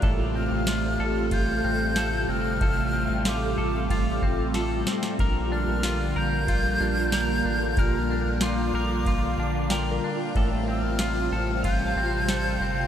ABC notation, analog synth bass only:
X:1
M:4/4
L:1/16
Q:1/4=93
K:Bb
V:1 name="Analog synth bass" clef=bass
A,,,3 A,,,3 A,,,4 A,,,4 G,,,2 | A,,,3 A,,,3 A,,,4 A,,,4 z2 | B,,,3 B,,,3 B,,,4 B,,,4 A,,,2 | B,,,3 B,,,3 B,,,4 B,,,4 z2 |
A,,,3 A,,,3 A,,,4 A,,,4 G,,,2 |]